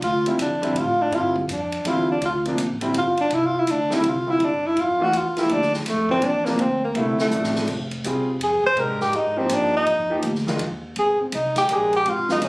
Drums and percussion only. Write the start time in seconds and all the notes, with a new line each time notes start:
0.02 ride
0.26 ride
0.39 hi-hat pedal, ride
0.63 ride
0.76 ride
1.12 ride
1.36 kick
1.49 hi-hat pedal, ride
1.72 ride
1.85 ride
2.22 ride
2.45 ride
2.58 hi-hat pedal, ride
2.81 ride
2.94 ride
3.17 ride
3.30 ride
3.67 hi-hat pedal, ride
3.91 snare
4.04 ride
4.40 ride
4.77 ride
5.13 hi-hat pedal, ride
5.37 snare, ride
5.49 ride
5.62 snare
5.74 snare
5.86 snare, hi-hat pedal, ride
6.09 kick
6.22 ride
6.45 snare
6.59 ride
6.95 ride
7.18 snare
7.31 hi-hat pedal
7.44 snare
7.55 snare
7.68 kick, crash
7.91 ride
8.04 hi-hat pedal, ride
8.41 ride
8.64 kick
8.77 ride
9.00 snare
9.13 ride
9.49 hi-hat pedal, ride
9.86 ride
10.22 hi-hat pedal, ride
10.35 snare
10.47 snare
10.59 ride
10.96 ride
11.32 hi-hat pedal, ride
11.56 snare, ride
11.69 hi-hat pedal, ride
11.93 ride
12.06 ride
12.29 snare
12.42 hi-hat pedal, ride